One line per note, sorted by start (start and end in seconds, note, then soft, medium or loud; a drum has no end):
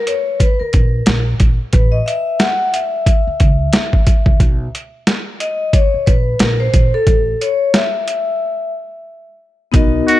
0.07 0.38 C#5 medium
0.07 closed hi-hat medium
0.40 0.58 B4 medium
0.40 kick medium
0.40 closed hi-hat loud
0.60 1.23 A#4 medium
0.60 muted upright bass stroke soft
0.73 0.99 A#1 medium
0.73 kick medium
0.73 closed hi-hat medium
1.06 1.33 A#1 loud
1.06 snare loud
1.06 closed hi-hat medium
1.40 1.55 A#1 medium
1.40 kick loud
1.40 closed hi-hat medium
1.73 1.99 A1 loud
1.73 1.94 B4 medium
1.73 kick loud
1.73 closed hi-hat medium
1.92 2.05 D#5 medium
2.06 2.41 E5 medium
2.06 closed hi-hat medium
2.39 2.74 F#5 loud
2.39 snare loud
2.39 closed hi-hat medium
2.73 4.36 E5 medium
2.73 closed hi-hat medium
3.06 kick medium
3.06 closed hi-hat loud
3.27 muted upright bass stroke medium
3.40 3.66 C#2 medium
3.40 kick medium
3.40 closed hi-hat medium
3.73 snare loud
3.73 closed hi-hat medium
3.93 kick medium
4.07 kick medium
4.07 closed hi-hat medium
4.26 4.37 C2 medium
4.26 kick medium
4.40 4.65 B1 loud
4.40 kick loud
4.40 closed hi-hat medium
4.75 closed hi-hat medium
5.07 snare loud
5.07 closed hi-hat medium
5.40 5.75 D#5 medium
5.40 closed hi-hat medium
5.73 6.08 C#5 medium
5.73 kick loud
5.73 closed hi-hat medium
5.94 muted upright bass stroke soft
6.06 6.33 A#1 medium
6.06 6.41 B4 medium
6.06 kick medium
6.06 closed hi-hat medium
6.39 6.65 A#1 loud
6.39 6.59 A#4 medium
6.39 snare loud
6.39 closed hi-hat medium
6.60 6.91 C5 medium
6.74 6.89 A#1 loud
6.74 kick loud
6.74 closed hi-hat medium
6.94 7.42 A4 loud
7.07 7.32 A1 loud
7.07 kick loud
7.07 closed hi-hat medium
7.41 7.75 C#5 medium
7.41 closed hi-hat medium
7.74 8.70 E5 medium
7.74 snare loud
7.74 closed hi-hat loud
8.08 closed hi-hat medium
9.72 9.99 B1 loud
9.72 10.19 B3 medium
9.72 10.19 D#4 medium
9.72 10.20 F#4 medium
9.72 10.20 A#4 medium
9.72 10.20 D#5 medium
9.72 kick loud
9.72 closed hi-hat medium
10.08 10.20 F#4 medium
10.08 closed hi-hat medium